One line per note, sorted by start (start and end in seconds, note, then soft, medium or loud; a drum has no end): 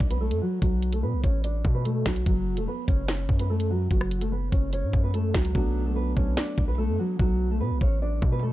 0.00 0.33 B1 loud
0.00 kick loud
0.10 0.20 B3 medium
0.10 0.20 B4 medium
0.10 closed hi-hat medium
0.21 0.40 A3 medium
0.21 0.40 A4 medium
0.31 0.41 F#2 loud
0.31 closed hi-hat medium
0.42 0.61 F#3 medium
0.42 0.60 F#4 medium
0.61 1.05 B1 loud
0.61 0.91 F#3 medium
0.61 0.91 F#4 loud
0.61 kick loud
0.61 closed hi-hat medium
0.82 closed hi-hat medium
0.93 1.03 A3 medium
0.93 1.02 A4 medium
0.93 closed hi-hat medium
1.03 1.15 B2 loud
1.03 1.22 B3 medium
1.03 1.22 B4 medium
1.13 1.23 B1 loud
1.24 1.63 A1 loud
1.24 1.43 C#4 medium
1.24 1.43 C#5 medium
1.24 kick medium
1.24 closed hi-hat medium
1.44 1.74 D4 medium
1.44 1.73 D5 medium
1.44 closed hi-hat medium
1.65 2.04 B2 loud
1.65 kick medium
1.75 1.85 B3 medium
1.75 1.84 B4 medium
1.85 2.04 A3 medium
1.85 2.04 A4 medium
1.85 closed hi-hat medium
2.06 2.26 B1 loud
2.06 2.25 F#3 medium
2.06 2.25 F#4 medium
2.06 kick loud
2.06 snare loud
2.16 closed hi-hat medium
2.26 2.59 F#1 loud
2.26 2.56 F#3 medium
2.26 2.56 F#4 loud
2.26 kick loud
2.26 closed hi-hat medium
2.57 2.67 E1 loud
2.57 2.67 A3 medium
2.57 2.67 A4 medium
2.57 closed hi-hat medium
2.68 2.87 B3 medium
2.68 2.86 B4 medium
2.88 3.27 F#1 loud
2.88 3.07 C#4 medium
2.88 3.07 C#5 medium
2.88 kick medium
2.88 closed hi-hat medium
3.08 3.38 C#4 medium
3.08 3.38 C#5 medium
3.08 snare loud
3.08 closed hi-hat medium
3.29 3.88 F#2 loud
3.29 kick medium
3.39 3.49 B3 medium
3.39 3.49 B4 medium
3.39 closed hi-hat medium
3.50 3.69 A3 medium
3.50 3.69 A4 medium
3.60 closed hi-hat medium
3.70 3.90 F#3 medium
3.70 3.89 F#4 medium
3.91 4.50 F#1 loud
3.91 4.20 F#3 medium
3.91 4.20 F#4 medium
3.91 kick loud
3.91 closed hi-hat medium
4.01 cross-stick medium
4.11 closed hi-hat medium
4.21 4.31 A3 medium
4.21 4.31 A4 medium
4.21 closed hi-hat medium
4.32 4.51 B3 medium
4.32 4.51 B4 medium
4.52 4.85 F#1 loud
4.52 4.72 C#4 medium
4.52 4.71 C#5 medium
4.52 kick medium
4.52 closed hi-hat medium
4.73 5.02 C#4 medium
4.73 5.02 C#5 medium
4.73 closed hi-hat loud
4.83 4.93 A2 loud
4.93 5.33 F#2 loud
4.93 kick medium
5.04 5.13 B3 medium
5.04 5.13 B4 medium
5.14 5.33 A3 medium
5.14 5.33 A4 medium
5.14 closed hi-hat medium
5.34 5.54 C#2 loud
5.34 5.53 F#3 medium
5.34 5.53 F#4 medium
5.34 kick loud
5.34 snare loud
5.34 open hi-hat medium
5.45 closed hi-hat medium
5.53 6.14 B1 loud
5.53 8.53 F#3 medium
5.53 5.84 F#3 medium
5.53 8.53 A3 medium
5.53 8.53 B3 medium
5.53 5.84 F#4 loud
5.53 kick loud
5.57 8.53 D4 medium
5.86 5.96 A3 medium
5.86 5.95 A4 medium
5.96 6.15 B3 medium
5.96 6.15 B4 medium
6.16 6.36 B1 loud
6.16 6.36 C#4 medium
6.16 6.35 C#5 medium
6.16 kick loud
6.37 6.67 D4 medium
6.37 6.66 D5 medium
6.37 snare loud
6.58 6.90 B1 loud
6.58 kick medium
6.68 6.78 B3 medium
6.68 6.77 B4 medium
6.78 6.98 A3 medium
6.78 6.97 A4 medium
6.89 6.98 F#2 loud
6.99 7.18 F#3 medium
6.99 7.18 F#4 medium
7.19 7.62 B1 loud
7.19 7.49 F#3 medium
7.19 7.48 F#4 loud
7.19 kick loud
7.51 7.60 A3 medium
7.51 7.60 A4 medium
7.60 7.72 B2 loud
7.60 7.80 B3 medium
7.60 7.79 B4 medium
7.71 7.81 B1 loud
7.81 8.21 A1 loud
7.81 8.01 C#4 medium
7.81 8.00 C#5 medium
7.81 kick medium
8.02 8.31 D4 medium
8.02 8.31 D5 medium
8.22 8.53 B2 loud
8.22 kick loud
8.32 8.42 B3 medium
8.32 8.42 B4 medium
8.43 8.53 A3 medium
8.43 8.53 A4 medium